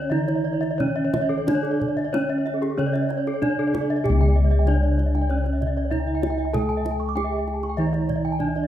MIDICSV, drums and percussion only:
0, 0, Header, 1, 2, 480
1, 0, Start_track
1, 0, Tempo, 686499
1, 1031, Time_signature, 4, 2, 24, 8
1, 1031, Tempo, 657895
1, 1991, Tempo, 622407
1, 6525, End_track
2, 0, Start_track
2, 0, Title_t, "Kendang"
2, 81, Note_on_c, 9, 62, 17
2, 151, Note_off_c, 9, 62, 0
2, 198, Note_on_c, 9, 62, 20
2, 268, Note_off_c, 9, 62, 0
2, 439, Note_on_c, 9, 62, 15
2, 509, Note_off_c, 9, 62, 0
2, 560, Note_on_c, 9, 62, 16
2, 560, Note_on_c, 9, 64, 49
2, 630, Note_off_c, 9, 62, 0
2, 630, Note_off_c, 9, 64, 0
2, 794, Note_on_c, 9, 62, 15
2, 794, Note_on_c, 9, 63, 46
2, 794, Note_on_c, 9, 64, 42
2, 864, Note_off_c, 9, 62, 0
2, 864, Note_off_c, 9, 63, 0
2, 864, Note_off_c, 9, 64, 0
2, 1034, Note_on_c, 9, 63, 45
2, 1034, Note_on_c, 9, 64, 57
2, 1107, Note_off_c, 9, 63, 0
2, 1107, Note_off_c, 9, 64, 0
2, 1157, Note_on_c, 9, 62, 17
2, 1230, Note_off_c, 9, 62, 0
2, 1279, Note_on_c, 9, 64, 42
2, 1352, Note_off_c, 9, 64, 0
2, 1403, Note_on_c, 9, 62, 13
2, 1476, Note_off_c, 9, 62, 0
2, 1517, Note_on_c, 9, 63, 47
2, 1590, Note_off_c, 9, 63, 0
2, 1756, Note_on_c, 9, 62, 17
2, 1829, Note_off_c, 9, 62, 0
2, 1871, Note_on_c, 9, 62, 18
2, 1944, Note_off_c, 9, 62, 0
2, 1991, Note_on_c, 9, 62, 17
2, 2068, Note_off_c, 9, 62, 0
2, 2118, Note_on_c, 9, 62, 18
2, 2195, Note_off_c, 9, 62, 0
2, 2233, Note_on_c, 9, 62, 17
2, 2310, Note_off_c, 9, 62, 0
2, 2361, Note_on_c, 9, 62, 16
2, 2439, Note_off_c, 9, 62, 0
2, 2480, Note_on_c, 9, 62, 16
2, 2480, Note_on_c, 9, 64, 40
2, 2557, Note_off_c, 9, 62, 0
2, 2557, Note_off_c, 9, 64, 0
2, 2727, Note_on_c, 9, 62, 16
2, 2727, Note_on_c, 9, 63, 42
2, 2727, Note_on_c, 9, 64, 40
2, 2804, Note_off_c, 9, 62, 0
2, 2804, Note_off_c, 9, 63, 0
2, 2804, Note_off_c, 9, 64, 0
2, 2966, Note_on_c, 9, 64, 48
2, 3043, Note_off_c, 9, 64, 0
2, 3086, Note_on_c, 9, 62, 12
2, 3163, Note_off_c, 9, 62, 0
2, 3442, Note_on_c, 9, 62, 15
2, 3442, Note_on_c, 9, 63, 32
2, 3519, Note_off_c, 9, 62, 0
2, 3519, Note_off_c, 9, 63, 0
2, 3690, Note_on_c, 9, 62, 15
2, 3767, Note_off_c, 9, 62, 0
2, 3812, Note_on_c, 9, 62, 16
2, 3889, Note_off_c, 9, 62, 0
2, 3927, Note_on_c, 9, 62, 14
2, 4004, Note_off_c, 9, 62, 0
2, 4050, Note_on_c, 9, 62, 14
2, 4127, Note_off_c, 9, 62, 0
2, 4173, Note_on_c, 9, 62, 14
2, 4173, Note_on_c, 9, 64, 36
2, 4250, Note_off_c, 9, 62, 0
2, 4250, Note_off_c, 9, 64, 0
2, 4407, Note_on_c, 9, 64, 33
2, 4484, Note_off_c, 9, 64, 0
2, 4646, Note_on_c, 9, 62, 12
2, 4646, Note_on_c, 9, 63, 32
2, 4723, Note_off_c, 9, 62, 0
2, 4723, Note_off_c, 9, 63, 0
2, 4768, Note_on_c, 9, 62, 11
2, 4845, Note_off_c, 9, 62, 0
2, 4886, Note_on_c, 9, 63, 38
2, 4886, Note_on_c, 9, 64, 48
2, 4963, Note_off_c, 9, 63, 0
2, 4963, Note_off_c, 9, 64, 0
2, 5004, Note_on_c, 9, 62, 12
2, 5081, Note_off_c, 9, 62, 0
2, 5127, Note_on_c, 9, 63, 35
2, 5204, Note_off_c, 9, 63, 0
2, 5367, Note_on_c, 9, 62, 12
2, 5367, Note_on_c, 9, 63, 30
2, 5444, Note_off_c, 9, 62, 0
2, 5444, Note_off_c, 9, 63, 0
2, 5604, Note_on_c, 9, 62, 16
2, 5681, Note_off_c, 9, 62, 0
2, 5724, Note_on_c, 9, 62, 17
2, 5801, Note_off_c, 9, 62, 0
2, 5840, Note_on_c, 9, 62, 15
2, 5917, Note_off_c, 9, 62, 0
2, 5963, Note_on_c, 9, 62, 15
2, 6040, Note_off_c, 9, 62, 0
2, 6081, Note_on_c, 9, 62, 14
2, 6081, Note_on_c, 9, 64, 39
2, 6158, Note_off_c, 9, 62, 0
2, 6158, Note_off_c, 9, 64, 0
2, 6317, Note_on_c, 9, 64, 36
2, 6394, Note_off_c, 9, 64, 0
2, 6435, Note_on_c, 9, 62, 12
2, 6512, Note_off_c, 9, 62, 0
2, 6525, End_track
0, 0, End_of_file